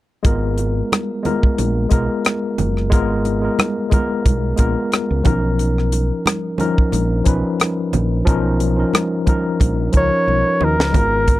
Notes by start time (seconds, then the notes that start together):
0.23 G#1 G#3 B3 F4 A#4, kick, closed hi-hat, muted conga
0.58 closed hi-hat, muted conga
0.92 cross-stick, closed hi-hat, high conga
1.23 G#3 B3 F4 A#4, closed hi-hat, muted conga, high conga, low conga
1.43 kick
1.58 A#1, closed hi-hat, high conga
1.89 B1 G#3 B3 F4 A#4, kick, closed hi-hat
2.25 cross-stick, closed hi-hat, high conga
2.58 F#1, closed hi-hat, muted conga, low conga
2.77 cross-stick
2.90 G#1 G#3 B3 F4 A#4, kick, closed hi-hat, muted conga
3.25 closed hi-hat, muted conga
3.42 G#3 B3 F4 A#4
3.59 cross-stick, closed hi-hat, muted conga, high conga
3.90 G#3 B3 F4 A#4, kick, closed hi-hat, high conga, low conga
4.26 B1, kick, closed hi-hat, muted conga, high conga
4.56 A#1 G#3 B3 F4 A#4, kick, closed hi-hat, muted conga
4.92 cross-stick, closed hi-hat, high conga
5.11 C#2
5.23 B1 F3 C#4 D#4 A#4, kick, closed hi-hat, muted conga, low conga
5.59 closed hi-hat
5.78 cross-stick
5.92 closed hi-hat, muted conga
6.26 cross-stick, closed hi-hat, muted conga, high conga
6.58 F3 C#4 D#4 A#4, closed hi-hat, high conga, low conga
6.78 kick
6.92 A#1, closed hi-hat, muted conga, high conga
7.24 B1 F3 C#4 D#4 B4, kick, closed hi-hat, muted conga
7.60 cross-stick, closed hi-hat, high conga
7.93 A#1, closed hi-hat, muted conga, low conga
8.25 B1 F3 C#4 D#4 A#4, kick, closed hi-hat
8.60 closed hi-hat, muted conga
8.77 F3 C#4 D#4 A#4
8.93 cross-stick, closed hi-hat, high conga
9.26 F3 C#4 D#4 A#4, kick, closed hi-hat, high conga, low conga
9.60 A#1, kick, closed hi-hat, high conga
9.93 C#2 F3 C#4 D#4 A#4, kick, closed hi-hat, muted conga
9.97 C#5
10.27 B1, muted conga, high conga
10.46 D#4 B4
10.61 D#2 F#4 A#4 D#5, low conga
10.79 C#2 B4, snare
10.92 G#1 G#3 B3 F4 A#4, kick, closed hi-hat, low conga
11.27 kick, closed hi-hat